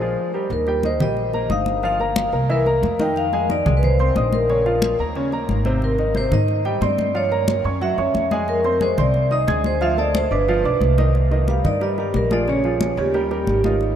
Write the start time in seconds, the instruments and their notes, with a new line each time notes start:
Already playing: upright bass A#1, vibraphone C5
0.01 upright piano F3 F4 G#4
0.34 upright piano G3 G4 A#4
0.50 upright bass D#2, vibraphone A#4, high conga
0.67 upright piano G3 G4 G5, high conga
0.83 upright piano D#3 D#4 D#5, vibraphone C5, high conga
0.99 upright bass A#1, upright piano G3 G4 G5, vibraphone D#5, high conga, low conga
1.17 high conga
1.33 upright piano A#3 A#4 A#5, high conga
1.50 upright bass G1, upright piano D#4 D#5 D#6, vibraphone F5, high conga
1.66 high conga
1.83 upright piano F3 F4 F5, vibraphone F5, high conga
2.00 upright piano A#3 A#4 A#5, high conga
2.16 high conga
2.32 upright bass C2, upright piano A#3 A#4 A#5
2.49 upright piano E3 E4 E5, vibraphone A#4, high conga
2.66 upright piano A#3 A#4 A#5, high conga
2.83 upright bass F2, high conga
2.99 upright piano D#3 D#4 D#5, vibraphone G5, high conga
3.16 vibraphone F5, high conga
3.33 upright piano G#3 G#4 G#5, high conga
3.49 upright piano D#3 D#4 D#5, vibraphone D5, high conga
3.66 upright bass C2, upright piano G#3 G#4 G#5, high conga, low conga
3.77 vibraphone B4
3.83 vibraphone C5, high conga, low conga
3.99 upright piano C4 C5 C6, high conga
4.16 upright bass A#1, upright piano D#4 D#5 D#6, high conga
4.33 vibraphone A#4, high conga
4.49 upright piano C#3 C#4 C#5, high conga
4.66 upright piano F3 F4 F5, high conga
4.82 high conga
4.99 upright bass D#2, upright piano A#3 A#4 A#5
5.15 upright piano C#3 C#4 C#5, high conga
5.32 upright piano A#3 A#4 A#5, high conga
5.49 upright bass G#1, high conga
5.65 upright piano C3 C4 C5, high conga
5.82 vibraphone A#4, high conga
5.98 upright piano D#3 D#4 D#5, high conga
6.15 upright piano C3 C4 C5, vibraphone C5, high conga
6.31 upright bass G#2, upright piano D#3 D#4 D#5, vibraphone D#5, high conga, low conga
6.48 high conga
6.65 upright piano G3 G4 G5, high conga
6.81 upright bass G2, upright piano C4 C5 C6, vibraphone D5, high conga
6.99 high conga
7.14 upright piano F3 F4 F5, vibraphone C#5, high conga
7.31 upright piano A#3 A#4 A#5, high conga
7.48 high conga
7.64 upright bass F#2, upright piano C#4 C#5 C#6
7.81 upright piano F#3 F#4 F#5, vibraphone E5, high conga
7.98 upright bass F#2, upright piano C#4 C#5 C#6, high conga
8.14 upright bass F2, high conga
8.31 upright piano G#3 G#4 G#5, high conga
8.48 vibraphone A#4, high conga
8.64 upright piano C4 C5 C6, high conga
8.81 upright piano G#3 G#4 G#5, vibraphone C5, high conga
8.97 upright bass C2, upright piano C4 C5 C6, vibraphone D5, high conga, low conga
9.14 high conga
9.31 upright piano D#4 D#5 D#6, vibraphone D#5, high conga
9.47 upright bass D2, upright piano G#4 G#5 G#6, high conga
9.64 vibraphone C5, high conga
9.81 upright piano F3 F4 F5, vibraphone E5, high conga
9.98 upright piano A3 A4 A5, vibraphone D5, high conga
10.15 vibraphone C5, high conga
10.31 upright bass G1, upright piano D4 D5 D6, vibraphone B4
10.48 upright piano F3 F4 F5, high conga
10.64 upright bass B1, upright piano D4 D5 D6, high conga
10.80 upright bass C2, high conga
10.98 upright piano D#3 D#4 D#5, high conga
11.15 high conga
11.31 upright piano D#3 D#4 D#5, high conga
11.48 upright piano G3 G4 A#4, vibraphone F5, high conga
11.64 upright bass G2, upright piano D#3 D#4 D#5, vibraphone D5, high conga, low conga
11.81 upright piano G3 G4 A#4, vibraphone D#5, high conga
11.98 upright piano G3 G4 A#4, vibraphone G4, high conga
12.14 upright bass A#1, vibraphone A#4, high conga
12.31 upright piano F3 F4 G#4, vibraphone D5, high conga
12.48 upright piano C#3 C#4 C#5, vibraphone C#5, high conga
12.64 upright piano F3 F4 G#4, high conga
12.81 high conga
12.97 upright bass D#2, upright piano C#3 C#4 C#5, vibraphone G4
13.14 upright piano G3 G4 A#4, high conga
13.31 upright piano G3 G4 A#4, high conga
13.47 upright bass G#1, high conga
13.64 upright piano D#3 D#4 F4, high conga
13.81 high conga